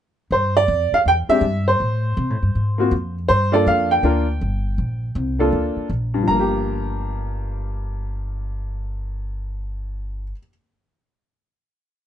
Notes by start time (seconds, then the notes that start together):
0.31 G2 C5
0.57 D5
0.68 F2
0.92 F5, muted upright bass stroke
1.06 E2 G5
1.28 G#3 C4 D4 G4 E5, muted upright bass stroke
1.41 G2
1.68 C5
1.80 A2
2.17 C3
2.30 A2
2.43 G2
2.55 G#2
2.78 A#3 C4 F4 F#4
2.91 F2
3.28 G2 C5
3.52 A#3 D4 F4 A4 D5
3.67 F2 F5
3.91 G5
4.03 D2 A#3 D4 F4 A#4
4.41 G1
4.78 A#1
5.15 C2
5.39 A#3 D4 F4 A4
5.52 D2
5.76 muted upright bass stroke
5.90 A#1
6.14 G2
6.23 F3
6.28 G1 A#3 A#5
6.40 G4